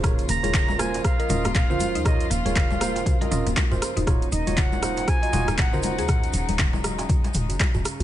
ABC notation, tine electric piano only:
X:1
M:4/4
L:1/16
Q:"Swing 16ths" 1/4=119
K:Ebdor
V:1 name="Tine electric piano"
[FBd]2 z [FBd]3 [FBc]3 [FBe] [FBe] z2 [FBc]3 | [FBd]2 z [FBd]3 [FBc]3 [FBe] [FBe] z2 [FBc]3 | [FGd]2 z [FGd]3 [FGc]3 [FGe] [FGe] z2 [FGc]3 | z16 |]